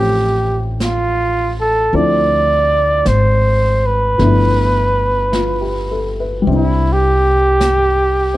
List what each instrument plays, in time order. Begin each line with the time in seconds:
Already playing: upright bass A1, grand piano F3 A3 C4 C#4 G4, flugelhorn G4
0.80 flugelhorn F4, brush sweep, snare, hi-hat pedal
1.61 flugelhorn A4
1.93 upright bass D2, grand piano F3 A3 C4 D4 E4, flugelhorn D5, brush sweep
3.06 upright bass G#1, flugelhorn C5, brush sweep, snare, hi-hat pedal
3.86 flugelhorn B4
4.18 upright bass G1, grand piano F3 A3 B3 D4, brush sweep, snare
4.23 grand piano E4
5.32 grand piano F4, brush sweep, snare, hi-hat pedal
5.61 grand piano G4
5.91 grand piano A4
6.20 grand piano B4
6.42 grand piano G3
6.46 upright bass C2, grand piano C4 D4, brush sweep
6.53 grand piano E4, flugelhorn E4
6.92 flugelhorn G4
7.61 brush sweep, snare, hi-hat pedal